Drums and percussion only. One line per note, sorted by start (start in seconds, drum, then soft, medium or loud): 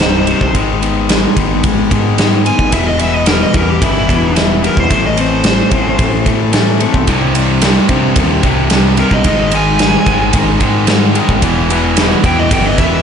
0.00 snare loud
0.00 ride medium
0.27 ride medium
0.41 kick medium
0.55 kick medium
0.55 ride medium
0.83 ride medium
1.09 snare loud
1.09 ride medium
1.37 kick medium
1.37 ride medium
1.64 kick loud
1.64 ride medium
1.91 kick medium
1.91 ride medium
2.18 snare loud
2.18 ride medium
2.46 ride medium
2.59 kick medium
2.72 kick medium
2.72 ride medium
2.99 ride medium
3.26 snare loud
3.26 ride medium
3.54 kick medium
3.54 ride medium
3.82 kick loud
3.82 ride loud
4.09 kick medium
4.09 ride medium
4.36 snare loud
4.36 ride medium
4.64 ride medium
4.77 kick medium
4.90 kick medium
4.90 ride medium
5.17 ride medium
5.44 snare loud
5.44 ride medium
5.71 kick medium
5.71 ride medium
5.99 kick loud
5.99 ride medium
6.26 kick medium
6.26 ride medium
6.53 snare loud
6.53 ride medium
6.80 ride medium
6.94 kick medium
7.07 kick medium
7.07 ride medium
7.35 ride medium
7.62 snare loud
7.62 ride loud
7.89 kick medium
7.89 ride medium
8.16 kick loud
8.16 ride loud
8.43 kick medium
8.43 ride medium
8.70 snare loud
8.70 ride medium
8.97 ride medium
9.11 kick medium
9.24 kick medium
9.24 ride medium
9.52 ride medium
9.79 snare loud
9.79 ride medium
10.06 kick medium
10.06 ride medium
10.33 kick loud
10.33 ride loud
10.60 kick medium
10.60 ride medium
10.87 snare loud
10.87 ride medium
11.15 ride medium
11.29 kick medium
11.42 kick medium
11.42 ride medium
11.70 ride medium
11.97 snare loud
11.97 ride loud
12.24 kick medium
12.24 ride medium
12.51 kick loud
12.51 ride loud
12.78 kick medium
12.78 ride medium